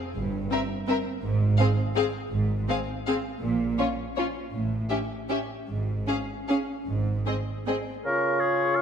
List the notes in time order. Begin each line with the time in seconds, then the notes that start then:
0.15 G1 G2
0.51 C4 A#4 E5
0.88 C4 A#4 E5
1.23 G#1 G#2
1.58 C4 G#4 F5
1.96 C4 G#4 F5
2.32 G#1 G#2
2.68 C4 G#4 F5
3.07 C4 G#4 F5
3.42 A#1 A#2
3.79 C#4 F4 C#5
4.16 C#4 F4 C#5
4.53 A1 A2
4.90 C#4 G4 E5
5.29 C#4 G4 E5
5.68 G#1 G#2
6.07 C#4 G#4 F5
6.48 C#4 G#4 F5
6.87 G#1 G#2
7.26 C4 G#4 D#5
7.67 C4 G#4 D#5
8.05 C#3 F4 A#4 C#6
8.40 G#4
8.76 F5